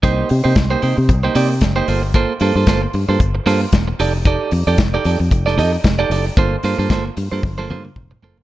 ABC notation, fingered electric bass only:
X:1
M:4/4
L:1/16
Q:"Swing 16ths" 1/4=114
K:Gm
V:1 name="Fingered electric bass" clef=bass
C,,2 C, C, C,,2 C, C, C,,2 C,2 ^F,,,2 G,,,2- | G,,,2 G,, G,, G,,,2 G,, G,, G,,,2 G,,2 =E,,,2 F,,,2- | F,,,2 F,, F,, F,,,2 F,, F,, F,,,2 F,,2 F,,,2 ^F,,,2 | G,,,2 G,, G,, G,,,2 G,, G,, G,,,2 G,,2 F,,,2 ^F,,,2 |]